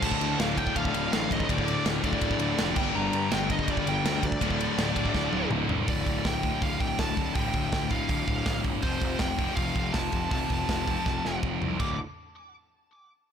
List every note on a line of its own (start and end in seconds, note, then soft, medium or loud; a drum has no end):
0.00 0.15 D1 loud
0.00 0.93 D2 medium
0.00 0.94 A2 loud
0.00 2.74 F3 medium
0.00 2.75 D4 medium
0.00 2.73 A4 medium
0.00 4.38 D5 medium
0.00 0.39 A5 loud
0.00 kick loud
0.00 crash loud
0.05 0.92 D3 loud
0.12 kick medium
0.21 0.33 D2 loud
0.21 ride medium
0.40 0.65 D1 loud
0.40 0.57 F5 loud
0.40 snare loud
0.40 ride loud
0.57 1.47 D2 medium
0.57 1.48 A2 medium
0.57 1.48 D3 medium
0.57 0.76 G5 loud
0.57 kick medium
0.57 ride medium
0.67 kick loud
0.76 0.89 D1 medium
0.76 1.11 F5 loud
0.76 kick medium
0.76 ride loud
0.85 kick medium
0.94 1.07 D1 medium
0.94 1.11 D2 medium
0.94 1.12 A2 medium
0.94 1.11 D3 medium
0.94 ride medium
1.12 1.25 A1 medium
1.12 1.47 D2 medium
1.12 1.48 A2 medium
1.12 1.49 D3 medium
1.12 1.32 F5 loud
1.12 snare loud
1.12 ride loud
1.31 1.44 A1 loud
1.31 1.51 D#5 medium
1.31 kick medium
1.31 ride medium
1.40 kick medium
1.48 1.74 D1 loud
1.48 2.39 D2 loud
1.48 2.40 A2 loud
1.48 2.38 D3 loud
1.48 1.87 D5 loud
1.48 kick loud
1.48 ride loud
1.58 kick medium
1.68 ride medium
1.86 1.98 D1 loud
1.86 snare loud
1.86 ride loud
2.03 2.16 D1 loud
2.03 2.75 D2 medium
2.03 2.76 A2 medium
2.03 2.75 D3 medium
2.03 2.74 D5 loud
2.03 kick medium
2.03 ride medium
2.13 kick medium
2.21 2.34 D1 loud
2.21 kick loud
2.21 ride loud
2.31 kick medium
2.39 2.52 D1 medium
2.39 2.56 D2 medium
2.39 2.58 A2 medium
2.39 2.57 D3 medium
2.39 ride medium
2.58 2.72 F1 loud
2.58 2.75 D2 medium
2.58 2.76 A2 medium
2.58 2.77 D3 medium
2.58 snare loud
2.58 ride loud
2.76 2.89 G1 loud
2.76 3.67 G2 loud
2.76 3.68 D3 loud
2.76 4.41 G3 medium
2.76 3.69 G3 loud
2.76 5.86 D4 medium
2.76 4.40 A#4 medium
2.76 2.96 G5 loud
2.76 kick loud
2.76 crash loud
2.95 3.08 G1 loud
2.95 3.33 A#5 loud
3.13 3.27 G2 loud
3.13 ride medium
3.31 3.57 G1 loud
3.31 4.22 G2 medium
3.31 4.23 D3 loud
3.31 4.23 G3 medium
3.31 3.50 G5 loud
3.31 snare loud
3.31 ride loud
3.50 3.70 D#5 loud
3.50 kick medium
3.50 ride medium
3.59 kick medium
3.68 3.81 G1 loud
3.68 3.85 G2 medium
3.68 3.86 D3 loud
3.68 3.85 G3 loud
3.68 3.88 D5 loud
3.68 kick loud
3.68 ride loud
3.77 kick medium
3.86 3.99 G1 medium
3.86 4.23 G2 medium
3.86 4.23 D3 medium
3.86 4.22 G3 medium
3.86 4.25 G5 loud
3.86 ride medium
4.05 4.17 D2 medium
4.05 snare loud
4.05 ride loud
4.23 4.36 D2 loud
4.23 5.48 D5 loud
4.23 kick medium
4.23 ride medium
4.32 kick medium
4.41 4.67 D1 loud
4.41 5.32 D2 loud
4.41 5.33 A2 loud
4.41 5.31 D3 loud
4.41 5.88 F3 medium
4.41 5.88 A4 medium
4.41 5.88 D5 medium
4.41 kick loud
4.41 ride loud
4.51 kick medium
4.61 ride medium
4.78 4.91 D1 medium
4.78 snare loud
4.78 ride loud
4.95 5.09 D1 loud
4.95 5.87 D2 medium
4.95 5.87 A2 medium
4.95 5.87 D3 medium
4.95 kick medium
4.95 ride medium
5.05 kick medium
5.14 5.27 D1 loud
5.14 kick loud
5.14 snare medium
5.33 5.45 D1 medium
5.33 5.50 D2 medium
5.33 5.51 A2 medium
5.33 5.50 D3 loud
5.33 high tom medium
5.50 5.63 D1 loud
5.50 5.87 D2 medium
5.50 5.88 A2 medium
5.50 mid tom loud
5.55 5.89 D3 medium
5.69 5.82 C2 medium
5.69 floor tom medium
5.88 6.01 D1 medium
5.88 6.46 D2 medium
5.88 6.43 A2 loud
5.88 6.43 D3 loud
5.88 6.27 D5 medium
5.88 kick loud
5.88 open hi-hat medium
6.06 6.19 D1 medium
6.06 kick medium
6.06 open hi-hat medium
6.25 6.51 D1 medium
6.25 6.64 G5 medium
6.25 kick loud
6.25 snare loud
6.25 open hi-hat medium
6.43 7.35 D2 medium
6.43 7.36 A2 medium
6.43 7.35 D3 medium
6.43 kick medium
6.43 open hi-hat medium
6.62 6.75 D1 medium
6.62 6.81 F5 loud
6.62 kick loud
6.62 open hi-hat medium
6.80 6.93 D1 medium
6.80 6.99 G5 medium
6.80 kick medium
6.80 open hi-hat medium
6.99 7.12 D1 medium
6.99 7.34 A5 loud
6.99 kick loud
6.99 snare loud
6.99 open hi-hat medium
7.17 7.30 D1 medium
7.17 kick medium
7.17 open hi-hat medium
7.35 7.49 D1 medium
7.35 7.90 D2 medium
7.35 7.91 A2 medium
7.35 7.92 G5 loud
7.35 kick loud
7.35 open hi-hat medium
7.39 7.90 D3 loud
7.53 7.67 D1 medium
7.53 kick medium
7.53 open hi-hat medium
7.72 7.98 D1 medium
7.72 kick loud
7.72 snare loud
7.72 open hi-hat medium
7.90 8.83 D2 medium
7.90 8.83 A2 medium
7.90 8.82 D3 medium
7.90 8.61 F5 medium
7.90 kick medium
7.90 open hi-hat medium
8.09 8.22 D1 medium
8.09 kick loud
8.09 open hi-hat medium
8.27 8.41 D1 medium
8.27 kick medium
8.27 open hi-hat medium
8.46 8.59 D1 medium
8.46 kick loud
8.46 snare loud
8.46 open hi-hat medium
8.64 8.78 G1 medium
8.64 kick medium
8.64 open hi-hat soft
8.82 8.96 F1 medium
8.82 9.41 F2 medium
8.82 9.39 C3 medium
8.82 9.38 F3 loud
8.82 9.22 C5 medium
8.82 kick loud
8.82 open hi-hat medium
9.01 9.15 F1 medium
9.01 kick medium
9.01 open hi-hat medium
9.19 9.46 F1 medium
9.19 9.55 G5 medium
9.19 kick loud
9.19 snare loud
9.19 open hi-hat medium
9.39 10.30 F2 medium
9.39 10.31 C3 medium
9.39 10.34 F3 medium
9.39 kick medium
9.39 open hi-hat medium
9.55 9.70 F1 medium
9.55 9.91 F5 loud
9.55 kick loud
9.55 open hi-hat medium
9.76 9.89 F1 medium
9.76 kick medium
9.76 open hi-hat medium
9.93 10.07 F1 medium
9.93 10.28 A5 medium
9.93 kick loud
9.93 snare loud
9.93 open hi-hat medium
10.12 10.26 F1 medium
10.12 kick medium
10.12 open hi-hat soft
10.31 10.44 F1 medium
10.31 10.86 F2 medium
10.31 10.87 C3 loud
10.31 10.85 F3 loud
10.31 11.39 A5 medium
10.31 kick loud
10.31 open hi-hat medium
10.50 10.63 F1 medium
10.50 kick medium
10.50 open hi-hat medium
10.69 10.95 F1 medium
10.69 kick loud
10.69 snare loud
10.69 open hi-hat medium
10.87 11.79 F2 medium
10.87 11.79 C3 medium
10.87 11.79 F3 medium
10.87 kick medium
10.87 open hi-hat medium
11.06 11.19 F1 medium
11.06 kick loud
11.06 snare medium
11.25 11.38 F1 medium
11.25 snare medium
11.43 11.56 F1 medium
11.43 kick loud
11.62 11.75 C2 medium
11.62 floor tom medium
11.80 11.97 D1 medium
11.80 11.95 D2 medium
11.80 11.95 A2 loud
11.80 11.96 D3 loud
11.80 11.97 D6 medium
11.80 kick loud
11.80 crash medium